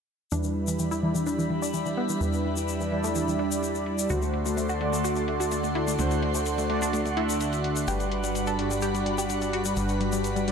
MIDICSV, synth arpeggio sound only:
0, 0, Header, 1, 2, 480
1, 0, Start_track
1, 0, Key_signature, 1, "minor"
1, 0, Tempo, 472441
1, 325, Time_signature, 4, 2, 24, 8
1, 10686, End_track
2, 0, Start_track
2, 0, Title_t, "Synth arpeggio sound"
2, 0, Program_c, 0, 84
2, 325, Note_on_c, 0, 62, 96
2, 418, Note_off_c, 0, 62, 0
2, 449, Note_on_c, 0, 52, 59
2, 537, Note_off_c, 0, 52, 0
2, 688, Note_on_c, 0, 52, 62
2, 777, Note_off_c, 0, 52, 0
2, 805, Note_on_c, 0, 52, 60
2, 898, Note_off_c, 0, 52, 0
2, 929, Note_on_c, 0, 64, 92
2, 1017, Note_off_c, 0, 64, 0
2, 1045, Note_on_c, 0, 52, 64
2, 1138, Note_off_c, 0, 52, 0
2, 1167, Note_on_c, 0, 52, 65
2, 1256, Note_off_c, 0, 52, 0
2, 1285, Note_on_c, 0, 62, 91
2, 1378, Note_off_c, 0, 62, 0
2, 1408, Note_on_c, 0, 52, 64
2, 1496, Note_off_c, 0, 52, 0
2, 1525, Note_on_c, 0, 52, 60
2, 1618, Note_off_c, 0, 52, 0
2, 1648, Note_on_c, 0, 62, 92
2, 1737, Note_off_c, 0, 62, 0
2, 1765, Note_on_c, 0, 52, 62
2, 1858, Note_off_c, 0, 52, 0
2, 1888, Note_on_c, 0, 52, 64
2, 1977, Note_off_c, 0, 52, 0
2, 2005, Note_on_c, 0, 59, 92
2, 2098, Note_off_c, 0, 59, 0
2, 2128, Note_on_c, 0, 52, 62
2, 2217, Note_off_c, 0, 52, 0
2, 2245, Note_on_c, 0, 52, 65
2, 2338, Note_off_c, 0, 52, 0
2, 2485, Note_on_c, 0, 52, 62
2, 2578, Note_off_c, 0, 52, 0
2, 2608, Note_on_c, 0, 52, 62
2, 2697, Note_off_c, 0, 52, 0
2, 2848, Note_on_c, 0, 52, 62
2, 2937, Note_off_c, 0, 52, 0
2, 2966, Note_on_c, 0, 52, 62
2, 3058, Note_off_c, 0, 52, 0
2, 3089, Note_on_c, 0, 57, 91
2, 3177, Note_off_c, 0, 57, 0
2, 3206, Note_on_c, 0, 52, 63
2, 3299, Note_off_c, 0, 52, 0
2, 3329, Note_on_c, 0, 52, 64
2, 3417, Note_off_c, 0, 52, 0
2, 3445, Note_on_c, 0, 62, 90
2, 4072, Note_off_c, 0, 62, 0
2, 4165, Note_on_c, 0, 66, 101
2, 4258, Note_off_c, 0, 66, 0
2, 4289, Note_on_c, 0, 57, 60
2, 4377, Note_off_c, 0, 57, 0
2, 4528, Note_on_c, 0, 57, 64
2, 4617, Note_off_c, 0, 57, 0
2, 4646, Note_on_c, 0, 57, 63
2, 4739, Note_off_c, 0, 57, 0
2, 4768, Note_on_c, 0, 66, 91
2, 4857, Note_off_c, 0, 66, 0
2, 4885, Note_on_c, 0, 57, 63
2, 4978, Note_off_c, 0, 57, 0
2, 5008, Note_on_c, 0, 57, 63
2, 5097, Note_off_c, 0, 57, 0
2, 5125, Note_on_c, 0, 66, 92
2, 5218, Note_off_c, 0, 66, 0
2, 5249, Note_on_c, 0, 57, 63
2, 5337, Note_off_c, 0, 57, 0
2, 5365, Note_on_c, 0, 57, 60
2, 5458, Note_off_c, 0, 57, 0
2, 5488, Note_on_c, 0, 66, 93
2, 5576, Note_off_c, 0, 66, 0
2, 5604, Note_on_c, 0, 57, 63
2, 5698, Note_off_c, 0, 57, 0
2, 5727, Note_on_c, 0, 57, 62
2, 5816, Note_off_c, 0, 57, 0
2, 5845, Note_on_c, 0, 64, 90
2, 5938, Note_off_c, 0, 64, 0
2, 5967, Note_on_c, 0, 57, 64
2, 6056, Note_off_c, 0, 57, 0
2, 6084, Note_on_c, 0, 57, 66
2, 6178, Note_off_c, 0, 57, 0
2, 6324, Note_on_c, 0, 57, 62
2, 6418, Note_off_c, 0, 57, 0
2, 6447, Note_on_c, 0, 57, 61
2, 6536, Note_off_c, 0, 57, 0
2, 6687, Note_on_c, 0, 57, 63
2, 6776, Note_off_c, 0, 57, 0
2, 6804, Note_on_c, 0, 57, 64
2, 6898, Note_off_c, 0, 57, 0
2, 6928, Note_on_c, 0, 62, 94
2, 7016, Note_off_c, 0, 62, 0
2, 7045, Note_on_c, 0, 57, 64
2, 7138, Note_off_c, 0, 57, 0
2, 7168, Note_on_c, 0, 57, 62
2, 7257, Note_off_c, 0, 57, 0
2, 7285, Note_on_c, 0, 64, 91
2, 7911, Note_off_c, 0, 64, 0
2, 8005, Note_on_c, 0, 67, 98
2, 8098, Note_off_c, 0, 67, 0
2, 8128, Note_on_c, 0, 55, 61
2, 8217, Note_off_c, 0, 55, 0
2, 8368, Note_on_c, 0, 55, 65
2, 8456, Note_off_c, 0, 55, 0
2, 8485, Note_on_c, 0, 55, 62
2, 8578, Note_off_c, 0, 55, 0
2, 8608, Note_on_c, 0, 69, 92
2, 8696, Note_off_c, 0, 69, 0
2, 8726, Note_on_c, 0, 55, 63
2, 8818, Note_off_c, 0, 55, 0
2, 8848, Note_on_c, 0, 55, 64
2, 8937, Note_off_c, 0, 55, 0
2, 8964, Note_on_c, 0, 67, 89
2, 9058, Note_off_c, 0, 67, 0
2, 9088, Note_on_c, 0, 55, 63
2, 9177, Note_off_c, 0, 55, 0
2, 9205, Note_on_c, 0, 55, 61
2, 9298, Note_off_c, 0, 55, 0
2, 9328, Note_on_c, 0, 67, 91
2, 9416, Note_off_c, 0, 67, 0
2, 9446, Note_on_c, 0, 55, 63
2, 9538, Note_off_c, 0, 55, 0
2, 9568, Note_on_c, 0, 55, 63
2, 9657, Note_off_c, 0, 55, 0
2, 9685, Note_on_c, 0, 66, 92
2, 9778, Note_off_c, 0, 66, 0
2, 9808, Note_on_c, 0, 55, 63
2, 9897, Note_off_c, 0, 55, 0
2, 9925, Note_on_c, 0, 55, 64
2, 10018, Note_off_c, 0, 55, 0
2, 10165, Note_on_c, 0, 55, 63
2, 10258, Note_off_c, 0, 55, 0
2, 10288, Note_on_c, 0, 55, 64
2, 10377, Note_off_c, 0, 55, 0
2, 10528, Note_on_c, 0, 55, 63
2, 10616, Note_off_c, 0, 55, 0
2, 10645, Note_on_c, 0, 55, 63
2, 10686, Note_off_c, 0, 55, 0
2, 10686, End_track
0, 0, End_of_file